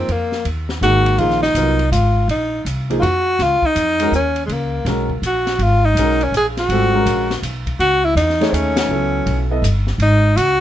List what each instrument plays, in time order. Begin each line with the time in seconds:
Already playing: tenor saxophone C4
0.08 upright bass F2, tenor saxophone A#3, ride
0.32 snare
0.45 upright bass D#2, ride
0.69 snare
0.81 upright bass G#1, grand piano D#3 A#3 D#4 G#4, tenor saxophone F#4, hi-hat pedal, ride
1.06 ride
1.18 upright bass A#1, grand piano F3 A#3 D#4 G#4, tenor saxophone F4, ride
1.31 snare
1.43 tenor saxophone D#4, snare
1.55 upright bass C2, grand piano F#3 B3 F4 A#4, hi-hat pedal, ride
1.79 ride
1.91 upright bass G#1, tenor saxophone F4, hi-hat pedal, ride
2.28 upright bass A#1, tenor saxophone D#4, ride
2.65 upright bass C2, hi-hat pedal, ride
2.90 grand piano F3 A#3 D#4 G#4, ride
2.99 upright bass F2, tenor saxophone F4 F#4, ride
3.39 upright bass C#2, tenor saxophone F4, snare, ride
3.62 tenor saxophone D#4, muted upright bass stroke, kick
3.75 upright bass F2, hi-hat pedal, ride
4.00 grand piano G#3 C#4 F#4 A#4, ride
4.12 upright bass D#2, tenor saxophone C#4, hi-hat pedal
4.36 ride
4.46 upright bass C#2, tenor saxophone G#3, ride
4.53 tenor saxophone A#3
4.85 upright bass B1, grand piano G#3 C#4 F#4 A#4, snare, ride
5.10 kick
5.22 upright bass A#1, hi-hat pedal, ride
5.26 tenor saxophone F#4
5.47 snare, ride
5.59 upright bass G#1, ride
5.63 tenor saxophone F4
5.85 tenor saxophone D#4
5.95 upright bass B1, grand piano G#3 C#4, hi-hat pedal, ride
5.99 grand piano F#4 A#4
6.21 tenor saxophone C#4, ride
6.32 upright bass A#1, hi-hat pedal, ride
6.36 tenor saxophone G#4
6.57 tenor saxophone F#4, snare, ride
6.69 upright bass G#1, grand piano G3 C4 F4 A4, ride
6.94 grand piano G#3 C#4 F#4 A#4
7.06 upright bass A#1, hi-hat pedal, ride
7.31 snare, ride
7.42 upright bass B1, hi-hat pedal, ride
7.67 kick, ride
7.79 upright bass C#2, tenor saxophone F#4, ride
8.04 tenor saxophone E4
8.15 upright bass E2, tenor saxophone D#4, hi-hat pedal, ride
8.30 snare
8.41 grand piano A3 D#4 G#4 C#5, snare, ride
8.49 upright bass D#2, tenor saxophone C4
8.54 tenor saxophone C#4, hi-hat pedal, ride
8.76 tenor saxophone C#4, snare, ride
8.89 upright bass C#2, grand piano F#3 B3 E4 A4
9.26 upright bass B1, ride
9.51 grand piano B3 E4 A4 D#5
9.62 upright bass G1, hi-hat pedal, ride
9.87 snare
9.98 upright bass G#1, ride
10.02 tenor saxophone D#4
10.36 upright bass C#2, tenor saxophone F#4, hi-hat pedal, ride